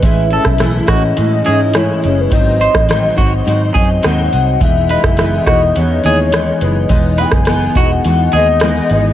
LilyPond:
<<
  \new Staff \with { instrumentName = "Soft synth lead" } { \time 4/4 \key e \major \tempo 4 = 105 e''4. dis''4. cis''8. b'16 | dis''4. r4. fis''4 | e''4. dis''8 cis''4. b'8 | dis''8 gis''4 fis''4 dis''4. | }
  \new Staff \with { instrumentName = "Clean electric guitar" } { \time 4/4 \key e \major r8 a'16 r8. fis'16 r8. gis'16 r4 r16 | r8 bis'16 r8. fis'16 r8. gis'16 r4 r16 | r8 b'16 r8. fis'16 r8. gis'16 r4 r16 | r8 b'16 r8. fis'16 r8. gis'16 r4 r16 | }
  \new Staff \with { instrumentName = "Steel-string acoustic guitar" } { \time 4/4 \key e \major <a, e gis cis' e'>8 <gis cis' e'>8 <a, e gis cis' e'>8 <gis cis' e'>8 <e gis cis' e'>8 <gis cis' e'>8 <a, e gis cis' e'>8 <gis cis' e'>8 | <gis, dis fis bis dis'>8 <fis bis dis'>8 <gis, dis fis bis dis'>8 <fis bis dis'>8 <dis fis bis dis'>8 <fis bis dis'>8 <gis, dis fis bis dis'>8 <fis bis dis'>8 | <e gis b dis'>8 <gis b dis'>8 <e gis b dis'>8 <gis b dis'>8 <e gis b dis'>8 <gis b dis'>8 <e gis b dis'>8 <gis b dis'>8 | <e gis b dis'>8 <gis b dis'>8 <e gis b dis'>8 <gis b dis'>8 <e gis b dis'>8 <gis b dis'>8 <e gis b dis'>8 <gis b dis'>8 | }
  \new Staff \with { instrumentName = "Fingered electric bass" } { \clef bass \time 4/4 \key e \major a,,8. b,,8. a,,8 a,8 gis,4 fis,,8 | gis,,8. a,,8. gis,,8 gis,8 fis,8 dis,8 bis,,8 | e,,8. fis,,8. e,,8 e,8 dis,4 fis,,8 | e,,8. fis,,8. e,,8 e,8 dis,4 gis,,8 | }
  \new DrumStaff \with { instrumentName = "Drums" } \drummode { \time 4/4 <hh bd>8 hh16 <bd ss>16 <hh ss>8 <hh bd ss>8 hh8 hh8 <hh ss>8 hh8 | <hh bd>8 hh16 <bd ss>16 <hh ss>8 <hh bd>8 hh8 <hh bd>8 <hh ss>8 hh8 | <hh bd>8 hh16 <bd ss>16 <hh ss>8 <hh bd ss>8 hh8 hh8 <hh ss>8 hh8 | <hh bd>8 hh16 <bd ss>16 <hh ss>8 <hh bd>8 hh8 hh8 <hh ss>8 hh8 | }
>>